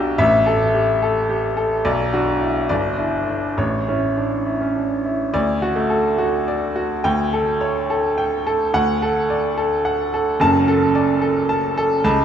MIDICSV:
0, 0, Header, 1, 2, 480
1, 0, Start_track
1, 0, Key_signature, 2, "major"
1, 0, Tempo, 557103
1, 158, Time_signature, 6, 3, 24, 8
1, 2078, Tempo, 585938
1, 4478, Tempo, 566038
1, 6878, Tempo, 553506
1, 10414, End_track
2, 0, Start_track
2, 0, Title_t, "Grand piano"
2, 0, Program_c, 0, 0
2, 0, Control_c, 0, 64, 127
2, 0, Note_on_c, 0, 35, 101
2, 0, Note_on_c, 0, 62, 90
2, 0, Note_on_c, 0, 66, 73
2, 0, Note_on_c, 0, 67, 92
2, 0, Note_on_c, 0, 79, 127
2, 122, Note_off_c, 0, 35, 0
2, 156, Note_off_c, 0, 67, 0
2, 158, Note_on_c, 0, 33, 113
2, 159, Note_on_c, 0, 76, 118
2, 174, Control_c, 0, 64, 0
2, 175, Note_off_c, 0, 66, 0
2, 178, Note_off_c, 0, 62, 0
2, 182, Note_off_c, 0, 79, 0
2, 332, Control_c, 0, 64, 127
2, 398, Note_on_c, 0, 69, 86
2, 539, Note_off_c, 0, 76, 0
2, 639, Note_on_c, 0, 67, 68
2, 777, Note_off_c, 0, 69, 0
2, 873, Note_off_c, 0, 67, 0
2, 883, Note_on_c, 0, 69, 82
2, 1117, Note_on_c, 0, 67, 70
2, 1258, Note_off_c, 0, 69, 0
2, 1351, Note_on_c, 0, 69, 81
2, 1352, Note_off_c, 0, 67, 0
2, 1556, Note_off_c, 0, 33, 0
2, 1592, Note_off_c, 0, 69, 0
2, 1592, Note_on_c, 0, 74, 103
2, 1593, Note_on_c, 0, 35, 100
2, 1606, Control_c, 0, 64, 0
2, 1736, Control_c, 0, 64, 127
2, 1839, Note_on_c, 0, 62, 81
2, 1840, Note_on_c, 0, 66, 83
2, 1982, Note_off_c, 0, 74, 0
2, 2032, Note_off_c, 0, 62, 0
2, 2080, Note_on_c, 0, 64, 63
2, 2222, Note_off_c, 0, 66, 0
2, 2292, Note_off_c, 0, 35, 0
2, 2309, Note_on_c, 0, 31, 82
2, 2309, Note_on_c, 0, 74, 99
2, 2313, Note_off_c, 0, 64, 0
2, 2329, Control_c, 0, 64, 0
2, 2479, Control_c, 0, 64, 127
2, 2545, Note_on_c, 0, 64, 66
2, 2547, Note_on_c, 0, 62, 59
2, 2690, Note_off_c, 0, 74, 0
2, 2740, Note_off_c, 0, 62, 0
2, 2790, Note_on_c, 0, 62, 60
2, 2933, Note_off_c, 0, 64, 0
2, 3009, Note_off_c, 0, 31, 0
2, 3031, Note_on_c, 0, 33, 85
2, 3033, Note_off_c, 0, 62, 0
2, 3033, Note_on_c, 0, 73, 82
2, 3048, Control_c, 0, 64, 0
2, 3181, Control_c, 0, 64, 127
2, 3281, Note_on_c, 0, 64, 63
2, 3283, Note_on_c, 0, 61, 64
2, 3421, Note_off_c, 0, 73, 0
2, 3473, Note_off_c, 0, 61, 0
2, 3520, Note_on_c, 0, 62, 55
2, 3664, Note_off_c, 0, 64, 0
2, 3758, Note_on_c, 0, 64, 58
2, 3759, Note_off_c, 0, 62, 0
2, 3876, Note_on_c, 0, 61, 63
2, 3997, Note_on_c, 0, 62, 53
2, 4070, Note_off_c, 0, 61, 0
2, 4144, Note_off_c, 0, 64, 0
2, 4238, Note_on_c, 0, 64, 61
2, 4240, Note_off_c, 0, 62, 0
2, 4445, Note_off_c, 0, 33, 0
2, 4474, Note_on_c, 0, 38, 92
2, 4474, Note_on_c, 0, 74, 104
2, 4477, Note_off_c, 0, 64, 0
2, 4495, Control_c, 0, 64, 0
2, 4649, Control_c, 0, 64, 127
2, 4716, Note_on_c, 0, 66, 87
2, 4830, Note_on_c, 0, 57, 76
2, 4861, Note_off_c, 0, 74, 0
2, 4949, Note_on_c, 0, 69, 77
2, 5026, Note_off_c, 0, 57, 0
2, 5100, Note_off_c, 0, 66, 0
2, 5192, Note_on_c, 0, 66, 78
2, 5338, Note_off_c, 0, 69, 0
2, 5443, Note_on_c, 0, 74, 80
2, 5581, Note_off_c, 0, 66, 0
2, 5678, Note_on_c, 0, 66, 80
2, 5827, Note_off_c, 0, 74, 0
2, 5884, Note_off_c, 0, 38, 0
2, 5919, Note_off_c, 0, 66, 0
2, 5919, Note_on_c, 0, 79, 107
2, 5923, Note_on_c, 0, 38, 95
2, 5939, Control_c, 0, 64, 0
2, 6075, Control_c, 0, 64, 127
2, 6164, Note_on_c, 0, 69, 81
2, 6303, Note_off_c, 0, 79, 0
2, 6399, Note_on_c, 0, 73, 81
2, 6546, Note_off_c, 0, 69, 0
2, 6648, Note_on_c, 0, 69, 81
2, 6783, Note_off_c, 0, 73, 0
2, 6882, Note_on_c, 0, 79, 83
2, 7031, Note_off_c, 0, 69, 0
2, 7133, Note_on_c, 0, 69, 93
2, 7271, Note_off_c, 0, 79, 0
2, 7332, Note_off_c, 0, 38, 0
2, 7368, Note_on_c, 0, 38, 97
2, 7371, Note_off_c, 0, 69, 0
2, 7371, Note_on_c, 0, 78, 116
2, 7384, Control_c, 0, 64, 0
2, 7548, Control_c, 0, 64, 127
2, 7618, Note_on_c, 0, 69, 89
2, 7757, Note_off_c, 0, 78, 0
2, 7857, Note_on_c, 0, 74, 85
2, 8001, Note_off_c, 0, 69, 0
2, 8095, Note_on_c, 0, 69, 85
2, 8240, Note_off_c, 0, 74, 0
2, 8333, Note_on_c, 0, 78, 80
2, 8479, Note_off_c, 0, 69, 0
2, 8583, Note_on_c, 0, 69, 85
2, 8719, Note_off_c, 0, 78, 0
2, 8782, Note_off_c, 0, 38, 0
2, 8809, Note_on_c, 0, 30, 99
2, 8820, Note_off_c, 0, 69, 0
2, 8820, Note_on_c, 0, 42, 105
2, 8820, Note_on_c, 0, 81, 119
2, 8832, Control_c, 0, 64, 0
2, 8958, Control_c, 0, 64, 127
2, 9053, Note_on_c, 0, 69, 92
2, 9200, Note_off_c, 0, 81, 0
2, 9288, Note_on_c, 0, 74, 88
2, 9435, Note_off_c, 0, 69, 0
2, 9519, Note_on_c, 0, 69, 84
2, 9671, Note_off_c, 0, 74, 0
2, 9757, Note_on_c, 0, 81, 93
2, 9904, Note_off_c, 0, 69, 0
2, 10003, Note_on_c, 0, 69, 104
2, 10140, Note_off_c, 0, 81, 0
2, 10202, Note_off_c, 0, 30, 0
2, 10208, Note_off_c, 0, 42, 0
2, 10234, Note_on_c, 0, 37, 114
2, 10239, Note_on_c, 0, 81, 113
2, 10240, Note_off_c, 0, 69, 0
2, 10257, Control_c, 0, 64, 0
2, 10379, Control_c, 0, 64, 127
2, 10414, Note_off_c, 0, 37, 0
2, 10414, Note_off_c, 0, 81, 0
2, 10414, End_track
0, 0, End_of_file